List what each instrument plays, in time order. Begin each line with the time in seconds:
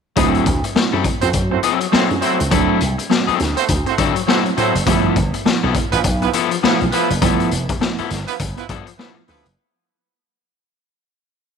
0.16 slap bass D2, clean electric guitar F3 B3 D#4 G#4, tine electric piano F#3 A3 C4 E4, kick, closed hi-hat
0.28 clean electric guitar F#3 C4 E4 A4
0.34 closed hi-hat
0.46 slap bass D2, kick, closed hi-hat
0.64 muted clean electric guitar stroke, closed hi-hat
0.75 tine electric piano F#3 A3 C4 E4, muted clean electric guitar stroke, muted slap bass stroke, snare
0.93 slap bass F#2, clean electric guitar F#3 C4 E4 A4
1.04 tine electric piano C4 E4, muted clean electric guitar stroke, kick, closed hi-hat
1.21 slap bass F2, horn section A3 C4 F#4 C5, tine electric piano C4 E4, muted clean electric guitar stroke, closed hi-hat
1.33 slap bass F#2, kick, closed hi-hat
1.51 horn section A3 C4 F#4 C5, tine electric piano C4 E4, muted clean electric guitar stroke
1.63 clean electric guitar F#3 C4 E4 A4, tine electric piano E4, closed hi-hat
1.81 muted clean electric guitar stroke, closed hi-hat
1.92 tine electric piano F#3 A3 C4 E4, clean electric guitar F#3 C4 E4 A4, horn section A3 C4 F#4 C5, muted slap bass stroke, snare
2.09 slap bass F#2, muted clean electric guitar stroke, closed hi-hat
2.21 clean electric guitar F#3 C4 E4 A4, horn section A3 C4 F#4 C5, closed hi-hat
2.39 slap bass C#2, tine electric piano C4 F#4, muted clean electric guitar stroke, closed hi-hat
2.51 slap bass D2, tine electric piano F#3 A3 C4 D4, clean electric guitar F#3 C4 E4 A4, kick, closed hi-hat
2.81 slap bass C2, closed hi-hat
2.98 muted clean electric guitar stroke, closed hi-hat
3.09 tine electric piano F#3 A3 C4 F#4, muted clean electric guitar stroke, snare
3.27 clean electric guitar F#3 C4 E4 A4, muted slap bass stroke, closed hi-hat
3.39 slap bass D2, tine electric piano C4 E4, muted clean electric guitar stroke, snare, closed hi-hat
3.56 horn section A3 C4 F#4 C5, tine electric piano C4 E4, muted clean electric guitar stroke, closed hi-hat
3.68 slap bass D2, kick, closed hi-hat
3.86 horn section A3 C4 F#4 C5, tine electric piano C4 E4, muted clean electric guitar stroke, closed hi-hat
3.98 slap bass D3, clean electric guitar F#3 C4 E4 A4, kick, closed hi-hat
4.16 muted clean electric guitar stroke, closed hi-hat
4.27 tine electric piano F#3 A3 C4 E4, clean electric guitar F#3 C4 E4 A4, horn section A3 C4 F#4 C5, snare
4.46 muted clean electric guitar stroke, closed hi-hat
4.57 slap bass A2, clean electric guitar F#3 C4 E4 A4, horn section A3 C4 F#4 C5, closed hi-hat
4.74 slap bass F#1, tine electric piano C4 E4, muted clean electric guitar stroke, closed hi-hat
4.86 slap bass G1, tine electric piano F3 A3 B3 E4, clean electric guitar F3 B3 E4 A4, kick, closed hi-hat
5.16 slap bass G1, kick, closed hi-hat
5.34 muted clean electric guitar stroke, closed hi-hat
5.45 tine electric piano F3 A3 B3 E4, muted clean electric guitar stroke, muted slap bass stroke, snare
5.63 slap bass B1, clean electric guitar F3 B3 E4 A4
5.74 tine electric piano B3 E4, muted clean electric guitar stroke, kick, closed hi-hat
5.92 slap bass A1, horn section F3 B3 E4 B4, tine electric piano B3 E4, muted clean electric guitar stroke, closed hi-hat
6.04 slap bass B1, kick, closed hi-hat
6.21 horn section F3 B3 E4 B4, tine electric piano B3 E4, muted clean electric guitar stroke, closed hi-hat
6.33 clean electric guitar F3 B3 E4 A4, tine electric piano E4, closed hi-hat
6.51 muted clean electric guitar stroke, closed hi-hat
6.63 tine electric piano F3 A3 B3 E4, clean electric guitar F3 B3 E4 A4, horn section F3 B3 E4 B4, muted slap bass stroke, snare
6.81 slap bass B1, muted clean electric guitar stroke, closed hi-hat
6.92 horn section F3 B3 E4 B4, clean electric guitar F3 B3 E4 A4, closed hi-hat
7.10 slap bass F#1, tine electric piano B3 G4, muted clean electric guitar stroke, closed hi-hat
7.21 slap bass G1, tine electric piano F3 A3 B3 E4, clean electric guitar F3 B3 E4 A4, kick, closed hi-hat
7.40 closed hi-hat
7.51 slap bass F1, closed hi-hat
7.69 muted clean electric guitar stroke, kick, closed hi-hat
7.80 tine electric piano F3 A3 B3 E4, muted clean electric guitar stroke, snare
7.98 clean electric guitar F3 B3 E4 A4, muted slap bass stroke, closed hi-hat
8.10 slap bass G1, tine electric piano B3 E4, muted clean electric guitar stroke, snare, closed hi-hat
8.27 horn section F3 B3 E4 B4, tine electric piano B3 D4, muted clean electric guitar stroke, closed hi-hat
8.39 slap bass G1, kick, closed hi-hat
8.57 horn section F3 B3 E4 B4, tine electric piano B3 E4, muted clean electric guitar stroke, closed hi-hat
8.69 slap bass G2, clean electric guitar F3 B3 E4 A4, tine electric piano E4, kick, closed hi-hat
8.87 muted clean electric guitar stroke, closed hi-hat
8.98 tine electric piano F3 A3 B3 E4, horn section F3 B3 E4 B4, clean electric guitar F3 B3 E4 A4, snare
9.17 muted clean electric guitar stroke
9.28 slap bass D2, horn section F3 B3 E4 B4, clean electric guitar F3 B3 E4 A4, open hi-hat
9.45 slap bass F#1, tine electric piano B3 E4, muted clean electric guitar stroke, closed hi-hat